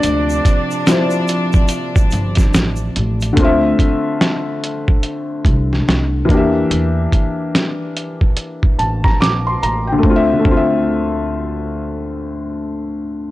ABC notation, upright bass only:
X:1
M:4/4
L:1/8
Q:"Swing 16ths" 1/4=72
K:Dm
V:1 name="Upright bass" clef=bass
D,, z4 G,,, A,,, A,,, | D,, z4 C,, C,, E,, | E,, z4 A,,, B,,, A,,, | D,, D,,6- D,, |]